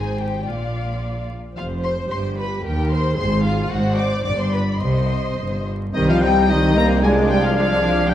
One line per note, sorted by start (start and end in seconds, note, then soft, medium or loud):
0.00 0.47 G#1 medium
0.00 0.47 G#2 soft
0.00 0.20 G#4 medium
0.00 0.46 C5 soft
0.00 0.19 G#5 medium
0.19 0.47 G4 soft
0.19 0.46 G5 medium
0.46 1.37 A#1 soft
0.46 1.37 A#2 soft
0.46 1.29 F4 soft
0.46 1.28 D5 soft
0.46 1.29 F5 medium
1.56 2.02 F1 medium
1.56 2.02 F2 medium
1.56 1.65 F4 soft
1.56 2.07 C5 medium
1.56 1.64 F5 medium
1.83 2.09 C5 medium
1.83 1.91 C6 medium
2.10 2.56 G1 medium
2.10 2.56 G2 medium
2.10 2.64 G4 soft
2.10 2.37 C5 medium
2.10 2.19 C6 medium
2.37 2.64 B4 medium
2.37 2.64 B5 medium
2.64 3.09 D#2 medium
2.64 2.91 G4 medium
2.64 3.17 A#4 medium
2.64 2.91 G5 medium
2.90 3.17 C5 medium
2.90 3.16 C6 medium
3.17 3.61 G#1 medium
3.17 3.62 G#2 medium
3.17 3.70 G#4 medium
3.17 3.44 C5 medium
3.17 3.43 C6 loud
3.43 3.70 F4 medium
3.43 3.69 F5 medium
3.69 4.15 G#1 medium
3.69 4.15 G#2 medium
3.69 3.98 F#4 medium
3.69 4.23 C5 medium
3.69 3.97 F#5 medium
3.96 4.24 D5 medium
3.96 4.22 D6 medium
4.23 4.71 G1 medium
4.23 4.71 G2 medium
4.23 4.38 D5 medium
4.23 4.81 D5 medium
4.23 4.37 D6 loud
4.38 4.52 C5 medium
4.38 4.52 C6 medium
4.52 4.61 B4 medium
4.52 4.80 B5 medium
4.80 5.28 C2 medium
4.80 5.28 C3 medium
4.80 5.65 C5 medium
4.80 5.65 D#5 medium
4.80 5.66 C6 medium
5.38 5.86 G1 medium
5.38 5.86 G2 medium
5.94 8.05 C2 medium
5.94 6.07 D#3 medium
5.94 6.45 G3 medium
5.94 6.45 C4 medium
5.94 7.05 D#4 medium
5.94 6.46 D#4 medium
5.94 6.07 D#5 medium
5.94 6.46 D#5 medium
5.94 7.04 G6 medium
6.08 6.22 F3 medium
6.08 6.24 F5 medium
6.08 6.14 F5 medium
6.22 6.49 G3 medium
6.22 6.49 G5 loud
6.22 6.49 G5 medium
6.49 6.76 D#3 medium
6.49 7.02 G3 medium
6.49 7.02 C4 medium
6.49 7.02 D#4 medium
6.49 6.76 D#5 loud
6.49 6.62 D#5 medium
6.49 7.02 D#5 medium
6.76 7.03 A#3 medium
6.76 7.04 A#3 medium
6.76 6.84 A#5 loud
6.76 6.89 A#5 medium
7.03 7.55 G#3 medium
7.03 7.30 G#3 medium
7.03 7.29 G#3 medium
7.03 7.55 D4 medium
7.03 8.14 D4 medium
7.03 7.55 F4 medium
7.03 7.55 D5 medium
7.03 7.11 G#5 medium
7.03 7.16 G#5 medium
7.03 8.11 G#6 medium
7.30 7.43 G3 medium
7.30 7.43 G5 loud
7.30 7.43 G5 medium
7.43 7.55 F3 medium
7.43 7.56 F3 medium
7.43 7.56 F5 medium
7.43 7.54 F5 medium
7.55 8.08 F3 medium
7.55 8.08 G#3 medium
7.55 8.07 D4 medium
7.55 8.08 F4 medium
7.55 8.08 D5 medium
7.55 8.08 F5 loud
7.55 8.11 F5 medium
8.09 8.14 B1 medium
8.09 8.14 G3 medium
8.09 8.14 D4 medium
8.09 8.14 G4 medium
8.09 8.14 D5 medium
8.09 8.14 G5 loud
8.09 8.14 G5 medium
8.09 8.14 G6 medium